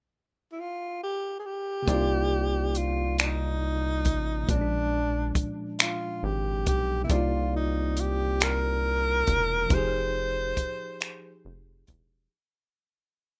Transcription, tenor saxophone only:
0.52 0.62 E4 medium
0.60 1.02 F4 medium
1.03 1.36 G4 medium
1.40 1.47 G#4 medium
1.46 2.79 G4 medium
2.77 3.19 F4 medium
3.20 4.45 D#4 medium
4.50 5.49 D4 medium
5.81 6.26 F4 medium
6.24 6.67 G4 medium
6.68 7.01 G4 medium
7.04 7.14 E4 medium
7.13 7.54 F4 medium
7.56 8.02 D#4 medium
8.00 8.45 G4 medium
8.43 9.76 A#4 loud
9.74 11.46 C5 loud

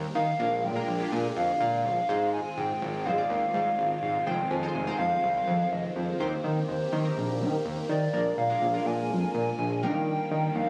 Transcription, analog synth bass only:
0.15 0.31 D#3 loud
0.39 0.65 A#1 loud
0.64 0.79 A#2 medium
0.88 1.04 A#1 loud
1.12 1.28 A#2 loud
1.36 1.52 F2 loud
1.60 1.86 A#2 loud
1.85 2.00 A#1 loud
2.09 2.40 G#2 loud
2.57 2.73 G#2 loud
2.81 3.07 G#1 loud
3.06 3.21 G#2 loud
3.30 3.45 D#2 loud
3.54 3.70 G#2 loud
3.78 3.94 G#1 loud
4.02 4.18 G#2 loud
4.26 4.42 F1 loud
4.51 4.66 F2 loud
4.75 4.91 F1 loud
4.99 5.15 F2 medium
5.23 5.39 C2 loud
5.47 5.63 F2 loud
5.72 5.87 F1 loud
5.96 6.11 F2 medium
6.20 6.36 D#2 loud
6.44 6.60 D#3 loud
6.68 6.84 D#2 loud
6.93 7.08 D#3 loud
7.17 7.43 A#1 loud
7.41 7.57 D#3 loud
7.65 7.81 D#2 loud
7.89 8.05 D#3 loud
8.14 8.29 A#1 loud
8.38 8.53 A#2 loud
8.62 8.78 A#1 loud
8.86 9.12 A#2 loud
9.10 9.26 F2 loud
9.34 9.50 A#2 loud
9.59 9.84 A#1 loud
9.83 10.14 D#3 loud
10.31 10.47 D#3 loud
10.55 10.70 D#2 loud

